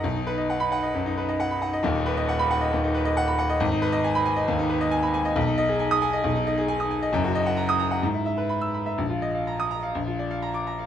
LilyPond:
\new Staff \with { instrumentName = "Grand piano" } { \time 4/4 \key ces \lydian \tempo 4 = 135 << { r4 r16 b''8 r2 r16 | r4 r16 b''8 r2 r16 | r4 r16 ces'''8 r2 r16 | r4 r16 ees'''8 r2 r16 |
r4 r16 ees'''8 r4. e'''8 r16 | r4 r16 ees'''8 r4. d'''8 r16 | } \\ { b,,16 dis'16 b'16 dis''16 fis''8 fis''16 dis''16 fis,16 dis'16 b'16 dis''16 fis''16 b''16 fis''16 dis''16 | <dis,, dis,>16 dis'16 b'16 dis''16 fis''8 fis''16 dis''16 dis,16 dis'16 b'16 dis''16 fis''16 b''16 fis''16 dis''16 | aes,,16 ees'16 ces''16 ees''16 aes''8 aes''16 ees''16 ees,16 ees'16 ces''16 ees''16 aes''16 ces'''16 aes''16 ees''16 | ces,16 ees'16 ees''16 aes'16 aes''8 aes''16 ees''16 ces,16 ees'16 ees''16 aes'16 aes''16 ees'''16 aes''16 ees''16 |
<ges,, ges,>16 ges'16 ees''16 ges''16 bes''8 bes''16 ges''16 gis,16 e'16 e''16 b'16 b''8 b''16 e''16 | bes,,16 f'16 ees''16 f''16 bes''8 bes''16 f''16 bes,,16 f'16 d''16 f''16 bes''8 bes''16 f''16 | } >> }